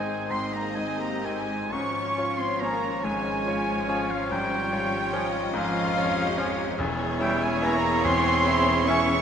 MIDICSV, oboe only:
0, 0, Header, 1, 2, 480
1, 0, Start_track
1, 0, Tempo, 896861
1, 406, Tempo, 958466
1, 886, Time_signature, 12, 3, 24, 8
1, 886, Tempo, 875912
1, 1846, Tempo, 829876
1, 5171, End_track
2, 0, Start_track
2, 0, Title_t, "Oboe"
2, 0, Program_c, 0, 68
2, 0, Note_on_c, 0, 80, 73
2, 166, Note_on_c, 0, 84, 75
2, 174, Note_off_c, 0, 80, 0
2, 285, Note_on_c, 0, 82, 65
2, 293, Note_off_c, 0, 84, 0
2, 401, Note_on_c, 0, 80, 70
2, 409, Note_off_c, 0, 82, 0
2, 523, Note_off_c, 0, 80, 0
2, 530, Note_on_c, 0, 82, 61
2, 651, Note_on_c, 0, 80, 68
2, 659, Note_off_c, 0, 82, 0
2, 887, Note_on_c, 0, 85, 84
2, 895, Note_off_c, 0, 80, 0
2, 1250, Note_on_c, 0, 84, 73
2, 1258, Note_off_c, 0, 85, 0
2, 1370, Note_on_c, 0, 82, 75
2, 1378, Note_off_c, 0, 84, 0
2, 1610, Note_on_c, 0, 80, 80
2, 1619, Note_off_c, 0, 82, 0
2, 2214, Note_on_c, 0, 77, 74
2, 2223, Note_off_c, 0, 80, 0
2, 2334, Note_on_c, 0, 79, 89
2, 2343, Note_off_c, 0, 77, 0
2, 2901, Note_off_c, 0, 79, 0
2, 3056, Note_on_c, 0, 77, 96
2, 3746, Note_off_c, 0, 77, 0
2, 4016, Note_on_c, 0, 79, 98
2, 4141, Note_on_c, 0, 80, 83
2, 4150, Note_off_c, 0, 79, 0
2, 4259, Note_on_c, 0, 82, 104
2, 4268, Note_off_c, 0, 80, 0
2, 4496, Note_on_c, 0, 84, 112
2, 4504, Note_off_c, 0, 82, 0
2, 4977, Note_on_c, 0, 85, 110
2, 4985, Note_off_c, 0, 84, 0
2, 5171, Note_off_c, 0, 85, 0
2, 5171, End_track
0, 0, End_of_file